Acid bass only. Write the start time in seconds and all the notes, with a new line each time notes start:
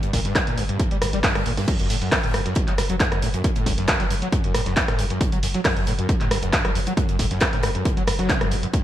0.03 G2
0.13 A#2
0.25 G2
0.35 G2
0.47 A#2
0.58 G2
0.69 G2
0.80 G1
0.91 G3
1.02 G2
1.13 G3
1.24 G2
1.35 G2
1.46 A#2
1.57 G2
1.68 F#2
1.79 F#2
1.90 A2
2.01 F#2
2.23 A2
2.34 F#2
2.46 F#2
2.56 F#1
2.67 F#3
2.78 F#2
2.90 F#3
3.00 F#2
3.12 F#2
3.22 A2
3.34 F#2
3.56 A2
3.66 F#2
3.78 F#2
3.88 F#1
4.00 F#3
4.10 F#2
4.22 F#3
4.33 F#2
4.44 F#2
4.55 A2
4.66 F#2
4.77 F#2
4.88 A2
4.99 F#2
5.10 F#2
5.21 F#1
5.32 F#3
5.43 F#2
5.55 F#3
5.65 F#2
5.77 F#2
5.87 A2
5.99 F#2
6.09 F#2
6.21 A2
6.31 F#2
6.43 F#2
6.53 F#1
6.65 F#3
6.75 F#2
6.87 F#3
6.97 F#2
7.09 F#2
7.19 A2
7.31 F#2
7.53 A2
7.63 F#2
7.75 F#2
7.85 F#1
7.97 F#3
8.07 F#2
8.19 F#3
8.29 B2
8.41 F#2
8.51 A2
8.63 F#2
8.73 G2